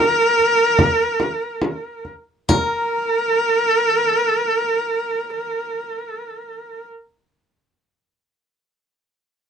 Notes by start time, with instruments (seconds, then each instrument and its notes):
Already playing: guzheng D#4 G#4 A#4, horsehead fiddle A#4
0.00 frame drum
0.40 frame drum
0.79 frame drum
1.20 frame drum
1.62 frame drum
2.05 frame drum
2.49 guzheng A#4, horsehead fiddle A#4, frame drum